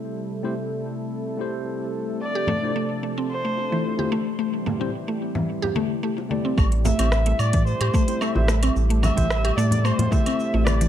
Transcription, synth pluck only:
X:1
M:4/4
L:1/16
Q:1/4=110
K:Am
V:1 name="Synth pluck"
z16 | z G A, z A, z A, C z A,2 E, z G A, z | A, z A, C z A,2 E, z G A, z A, z A, C | A, z A, C z A,2 E, z G A, z A, z A, C |
z A,2 E, z G A, z A, z A, C z A,2 E, |]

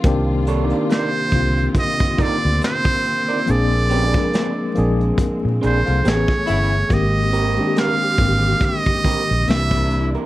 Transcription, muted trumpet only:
X:1
M:4/4
L:1/8
Q:"Swing 16ths" 1/4=70
K:Cm
V:1 name="Muted trumpet"
z2 c2 e d c2 | d4 z c ^c2 | e2 f2 e2 =e z |]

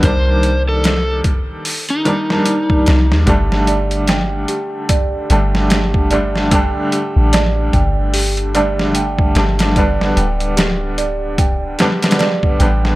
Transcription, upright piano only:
X:1
M:4/4
L:1/16
Q:"Swing 16ths" 1/4=74
K:Cdor
V:1 name="Upright piano" clef=bass
[E,G,B,D]8- [E,G,B,D]2 [E,G,B,D] [E,G,B,D] z4 | [D,G,A,D]8- [D,G,A,D]2 [D,G,A,D]4 [D,G,A,D]2 | [D,G,A,D]8- [D,G,A,D]2 [D,G,A,D]4 [D,G,A,D]2 | [D,G,=B,D]8- [D,G,B,D]2 [D,G,B,D]4 [D,G,B,D]2 |]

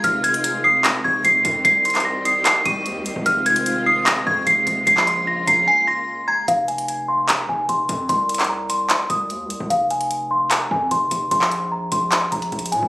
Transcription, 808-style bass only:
X:1
M:4/4
L:1/16
Q:1/4=149
K:Fm
V:1 name="808-style bass" clef=bass
F,,,8- F,,,2 F,,,2 F,,,2 F,,2 | C,,8- C,,2 C,,2 E,,3/2 C,,3/2 C,, | F,,,8- F,,,2 F,,2 F,,,2 F,,,2 | B,,,6 B,,,2 z8 |
F,,,8- F,,,2 F,,,2 F,,,2 F,,2 | C,,8- C,,2 C,,2 E,,3/2 C,,3/2 C,, | F,,,8- F,,,2 F,,2 F,,,2 F,,,2 | B,,,6 B,,,4 B,,,2 B,,,2 B,, B,,, |]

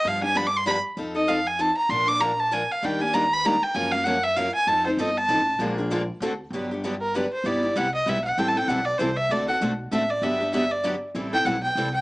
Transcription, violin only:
X:1
M:3/4
L:1/8
Q:"Swing" 1/4=194
K:Fdor
V:1 name="Violin"
f a (3=b d' c' b z | z e f a =a b | c' d' b =a _a f | g a b _c' b g |
a f _g _f =f a | =a c e a3 | z6 | [K:G] z3 _B =B c |
d2 f _e =e f | (3g a g f d c e | d f z2 e d | e2 e d z2 |
z g f g2 g |]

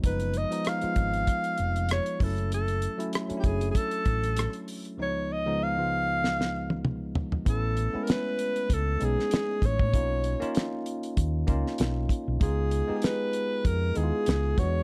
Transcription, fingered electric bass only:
X:1
M:4/4
L:1/16
Q:"Swing 16ths" 1/4=97
K:C#mix
V:1 name="Fingered electric bass" clef=bass
F,,,3 z3 _A,,,2 z2 =F,,,3 z ^F,,,2- | F,,,3 z3 F,,,2 z2 =A,,,3 z3 | z16 | =A,,,3 z4 z C,,2 B,,, z3 A,,, =A,, |
B,,,3 z4 z D,,2 C,, z B,,,2 z B,,, | C,,3 z4 z E,,2 D,, z C,,2 =E,,2 |]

